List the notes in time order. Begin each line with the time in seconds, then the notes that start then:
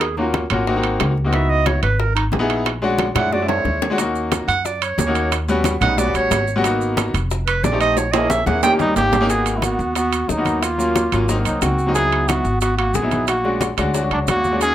Already playing: D#2
0.01 G#4, high bongo, high conga, high timbale
0.17 A#3 C#4 D#4 F4 F#4, high bongo, high conga
0.34 high bongo, high conga, high timbale, low timbale
0.50 G#1 A#3 C#4 F4 F#4, high conga, low conga, high timbale
0.67 A#3 C4 D#4 F#4, high bongo, high conga
0.75 A#3 C4 D#4 F#4
0.84 high bongo, high conga, high timbale
1.00 C#2, high bongo, low bongo, high conga, high timbale, low timbale
1.17 high bongo
1.24 A#3 C4 D#4 F#4
1.33 B3 D#4 E4 F#4 E5, high bongo, high conga, high timbale
1.49 D#5, high conga
1.66 C#5, high bongo, high conga, high timbale, low timbale
1.83 G#1 B4, high conga, high timbale
1.99 A#4, high bongo, high conga
2.15 D#4, high conga, high timbale
2.32 A#1, high bongo, low bongo, high conga, low timbale
2.39 B3 D#4 E4 G#4
2.50 high timbale
2.65 high bongo, high conga, high timbale
2.82 G#3 C#4 D4 F#4, high bongo, high conga
2.98 high bongo, high conga, high timbale, low timbale
3.15 F#2 G#3 C#4 D4 E4 F#5, high bongo, high conga, low conga, high timbale
3.32 G#3 C#4 D4 F#4 D5, high bongo, high conga
3.41 G#3 C#4 D4 E4
3.48 C#5, low bongo, high conga, high timbale
3.65 D#2, low bongo, high conga
3.82 low bongo, low timbale
3.90 G#3 C#4 D4 F#4
3.98 A#3 C#4 D#4 F#4, high bongo, high conga, high timbale, maracas
4.15 high conga, maracas
4.32 high bongo, high conga, high timbale, low timbale, maracas
4.48 F#2 F#5, high conga, high timbale, maracas
4.64 D5, high bongo, high conga, maracas
4.81 C#5, high conga, high timbale, maracas
4.98 D#2, high bongo, low bongo, high conga, low timbale, maracas
5.07 A#3 C#4 D#4 F#4
5.15 high timbale, maracas
5.32 high bongo, high conga, high timbale, maracas
5.48 G3 B3 C#4 F#4, high bongo, high conga, maracas
5.64 high bongo, high conga, high timbale, low timbale, maracas
5.81 B1 G3 B3 C#4 D#4 F#5, high conga, low conga, high timbale, maracas
5.97 G3 B3 C#4 F#4 D5, high bongo, high conga, maracas
6.06 G3 B3 C#4 F#4
6.14 A1 C#5, high bongo, high conga, high timbale, maracas
6.30 G#1, high bongo, low bongo, high conga, high timbale, low timbale, maracas
6.48 high bongo, maracas
6.56 G3 B3 C#4 F#4
6.64 A#3 B3 D#4 F#4, high bongo, high conga, high timbale, maracas
6.81 high conga, maracas
6.97 high bongo, high conga, high timbale, low timbale, maracas
7.14 F1, high conga, high timbale, maracas
7.31 high bongo, high conga, maracas
7.47 B4, high conga, high timbale, maracas
7.64 A#1 D5, high bongo, low bongo, high conga, low timbale, maracas
7.72 A3 C4 D#4 G4
7.81 D#5, high timbale, maracas
7.96 C#5, high bongo, high conga, high timbale, maracas
8.12 A#3 C#4 E4 G#4 D#5, high bongo, high conga, high timbale, maracas
8.30 E5, high conga, high timbale, maracas
8.46 D#2 A#3 C#4 E4 G#4 F#5, low bongo, high conga, low conga, maracas
8.63 A#3 C#4 D#4 G4 G5, low bongo, high conga, low timbale, maracas
8.72 A#3 C#4 D#4 G4
8.79 G3 D#4, high conga, low timbale, maracas
8.96 G#1 A#3 G4, low bongo, low timbale, maracas
9.12 low bongo, low conga, low timbale, maracas
9.21 A#3 C#4 D#4 G4
9.28 A#3 B3 D#4 F#4 G#4, high bongo, high conga, high timbale, maracas
9.46 high conga, high timbale, maracas
9.55 G#3 E4
9.62 B3 F#4, high bongo, high conga, high timbale, maracas
9.79 D#2, high conga, maracas
9.95 B3 F#4, high bongo, high conga, high timbale, maracas
10.12 high conga, high timbale, maracas
10.28 D#2 F#3 D#4, high bongo, low bongo, high conga, maracas
10.37 A#3 B3 D#4 F#4
10.45 high conga, high timbale, maracas
10.62 A#3 F4, high bongo, high timbale, maracas
10.78 F#3 A#3 C#4 F4, high bongo, high conga, maracas
10.96 high bongo, high conga, high timbale, maracas
11.12 G#1 F#3 A#3 C#4 F4, high bongo, high conga, high timbale, maracas
11.29 F#3 A#3 C4 D#4, high bongo, high conga, maracas
11.37 F#3 A#3 C4 D#4
11.45 C2 F#3 D#4, high conga, high timbale, maracas
11.61 C#2 C4 F#4, high bongo, low bongo, high conga, high timbale, maracas
11.78 high bongo, maracas
11.86 F#3 A#3 C4 D#4
11.94 F#3 B3 D#4 E4 G#4, high bongo, high conga, high timbale, maracas
12.12 high conga, high timbale
12.28 B3 F#4, high bongo, high conga, high timbale, maracas
12.45 G#1, high conga, maracas
12.60 B3 F#4, high bongo, high conga, high timbale, maracas
12.77 A#3 F#4, high conga, high timbale
12.94 A#1 B3 G#4, high bongo, low bongo, high conga, maracas
13.02 F#3 B3 D#4 E4
13.11 high conga, high timbale, maracas
13.27 A#3 F#4, high bongo, high timbale, maracas
13.44 G#3 C#4 D4 F#4, high bongo, high conga
13.61 high bongo, high conga, high timbale, maracas
13.77 D2 G#3 C#4 D4 F#4, high bongo, high conga, high timbale, maracas
13.93 G#3 C#4 D4 F#4, high bongo, high conga, maracas
14.01 G#3 C#4 D4 F#4
14.11 C#2 F#3 D4, high conga, high timbale
14.27 D#2 A#3 F#4, high bongo, low bongo, high conga, high timbale, maracas
14.44 high bongo, high conga, maracas
14.51 G#3 C#4 D4 F#4
14.60 A#3 C#4 D#4 F#4 G#4, high bongo, high timbale, maracas